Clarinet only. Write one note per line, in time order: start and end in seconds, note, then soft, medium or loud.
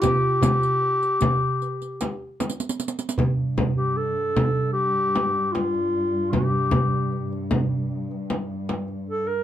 0.00 2.38 G4 loud
3.77 3.99 G4 medium
3.97 4.72 A4 loud
4.73 5.54 G4 loud
5.52 6.32 F4 medium
6.31 7.49 G4 medium
9.09 9.29 A4 medium
9.28 9.44 A#4 medium